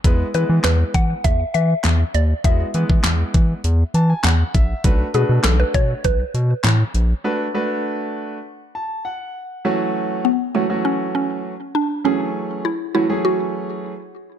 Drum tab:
HH |x-x-x-x-x-x-x-x-|x-x-x-x-x-x-x-x-|x-x-x-x-x-x-x-x-|----------------|
CP |----x-------x---|----x-------x---|----x-------x---|----------------|
SD |----o-------o---|----o-------o---|----o-------o---|----------------|
BD |o-----o-o-------|o--o--o-------o-|o-----o-o-------|----------------|

HH |----------------|----------------|
CP |----------------|----------------|
SD |----------------|----------------|
BD |----------------|----------------|